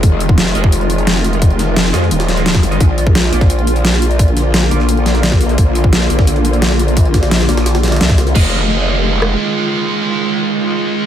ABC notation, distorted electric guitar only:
X:1
M:4/4
L:1/16
Q:1/4=173
K:Fdor
V:1 name="Distorted electric guitar"
z6 [A,Fe] z8 z | z6 [A,Fe] z4 [A,Fe] z3 [A,Fe] | z6 [B,Fd] z8 z | z6 [B,Fd] z4 [B,Fd] z4 |
z6 [B,Fd] z8 z | z6 [B,Fd] z4 [B,Fd] z4 | [A,Fe]16- | [A,Fe]16 |]